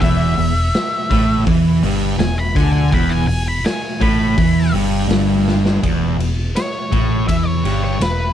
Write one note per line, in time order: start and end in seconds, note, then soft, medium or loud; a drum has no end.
0.01 0.36 E1 loud
0.01 0.36 E2 loud
0.01 1.42 E5 loud
0.01 kick loud
0.01 open hi-hat medium
0.38 0.72 E1 medium
0.38 0.67 E2 medium
0.38 open hi-hat medium
0.74 snare loud
0.74 open hi-hat medium
1.10 1.44 A1 medium
1.10 1.46 A2 loud
1.10 kick loud
1.10 open hi-hat medium
1.46 1.81 E2 loud
1.46 1.82 E3 loud
1.46 kick loud
1.46 open hi-hat medium
1.82 2.16 G1 medium
1.82 2.18 G2 loud
1.82 open hi-hat medium
2.19 2.53 E1 medium
2.19 2.48 E2 medium
2.19 2.37 G#5 loud
2.19 snare loud
2.19 open hi-hat medium
2.38 2.56 B5 loud
2.55 2.90 D2 medium
2.55 2.91 D3 loud
2.55 2.71 G#5 loud
2.55 kick loud
2.55 open hi-hat medium
2.73 2.91 G#5 loud
2.91 3.26 E1 medium
2.91 3.27 E2 loud
2.91 3.11 B5 loud
2.91 kick medium
2.91 open hi-hat medium
3.10 3.26 G#5 loud
3.27 3.62 E1 medium
3.27 3.57 E2 medium
3.27 3.45 G#5 loud
3.27 open hi-hat medium
3.48 3.65 B5 medium
3.65 4.00 G#5 medium
3.65 snare loud
3.65 open hi-hat medium
4.00 4.35 A1 loud
4.00 4.36 A2 loud
4.00 4.72 B5 loud
4.00 kick loud
4.00 open hi-hat medium
4.38 4.71 E2 medium
4.38 4.73 E3 loud
4.38 kick loud
4.38 open hi-hat medium
4.73 5.07 G1 loud
4.73 5.08 G2 loud
4.73 open hi-hat medium
5.09 5.78 G1 loud
5.09 5.81 G2 loud
5.09 snare loud
5.09 open hi-hat medium
5.48 snare medium
5.65 snare medium
5.82 6.17 E1 medium
5.82 6.17 E2 medium
5.82 kick loud
5.82 ride medium
6.18 6.52 E1 medium
6.18 6.48 E2 medium
6.18 ride medium
6.56 7.26 C#5 medium
6.56 snare loud
6.56 ride medium
6.91 7.26 A1 medium
6.91 7.27 A2 loud
6.91 kick loud
6.91 ride medium
7.28 7.62 E2 medium
7.28 7.63 E3 loud
7.28 7.47 E5 medium
7.28 kick loud
7.28 ride medium
7.47 7.82 C#5 medium
7.64 7.98 G1 medium
7.64 7.99 G2 loud
7.64 ride medium
7.84 8.01 C#5 medium
8.00 8.33 E1 medium
8.00 8.29 E2 medium
8.00 8.33 B4 medium
8.00 snare loud
8.00 ride medium